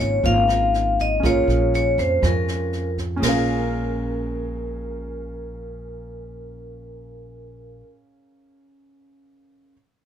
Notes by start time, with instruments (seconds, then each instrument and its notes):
Already playing: nylon-string guitar C#3 A#3 D#4 F4, grand piano C#4 F4 A#4 D#5
0.00 upright bass G#1, vibraphone C#5
0.23 upright bass G#1, nylon-string guitar G#2 A#3 D#4 F4, vibraphone F5, kick, snare
0.47 nylon-string guitar A#3 D#4 F4, cross-stick, snare
0.74 snare
0.98 vibraphone D#5, kick, snare
1.20 upright bass A#1, nylon-string guitar A#2 G#3 C#4, grand piano C#4 G#4, kick, cross-stick, snare
1.24 nylon-string guitar F4, grand piano A#4 F5, vibraphone C#5
1.48 upright bass A#1, snare
1.74 vibraphone C#5, snare
1.98 upright bass F2, vibraphone C5, kick, snare
2.22 nylon-string guitar F2 G#3 C#4 F4, upright bass F2, kick, cross-stick, snare
2.26 vibraphone A#4
2.48 snare
2.73 snare
2.98 kick, snare
3.16 nylon-string guitar A#2, grand piano C#4 G#4
3.22 upright bass A#1, nylon-string guitar G#3, vibraphone A#4, grand piano A#4, snare, crash
3.28 nylon-string guitar C#4 F4, grand piano F5